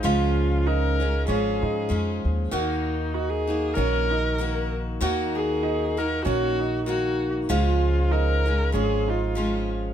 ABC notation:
X:1
M:4/4
L:1/16
Q:"Swing" 1/4=96
K:Db
V:1 name="Viola"
F4 B4 A6 z2 | E4 G A3 B6 z2 | z2 A4 B2 G4 G3 z | F4 B4 A2 F4 z2 |]
V:2 name="Upright piano"
F4 E4 D2 E4 z2 | G4 E4 D2 E4 z2 | G4 E4 D2 E4 z2 | F4 E4 D2 E4 z2 |]
V:3 name="Steel-string acoustic guitar"
[D,F,A,DF]6 [A,DF]2 [F,A,DF]4 [F,A,DF]4 | [E,B,EG]6 [B,EG]2 [E,B,EG]4 [E,B,EG]4 | [E,B,EG]6 [B,EG]2 [E,B,EG]4 [E,B,EG]4 | [D,F,A,DF]6 [A,DF]2 [F,A,DF]4 [F,A,DF]4 |]
V:4 name="Upright bass" clef=bass
D,,8 A,,,2 A,,2 F,,2 E,,2 | E,,8 B,,,8 | E,,8 B,,,8 | D,,8 A,,,8 |]